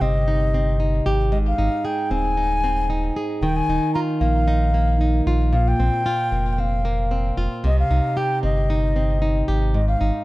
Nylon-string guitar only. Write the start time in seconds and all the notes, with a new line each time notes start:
Already playing: C3 D#4 G4
0.01 C4
0.28 D#4
0.54 C4
0.80 D#4
1.06 G4
1.32 G#2
1.58 D#4
1.85 G#4
2.11 C4
2.37 D#4
2.64 C4
2.90 D#4
3.16 G#4
3.43 D#3
3.70 D#4
3.96 F4
4.21 A#3
4.48 D#4
4.74 A#3
5.01 D#4
5.27 F4
5.53 A#2
5.80 C4
6.06 F4
6.32 A#3
6.58 C4
6.85 A#3
7.11 C4
7.37 F4
7.64 C3
7.91 D#4
8.17 G4
8.43 C4
8.70 D#4
8.96 C4
9.22 D#4
9.48 G4
9.74 G#2
10.01 D#4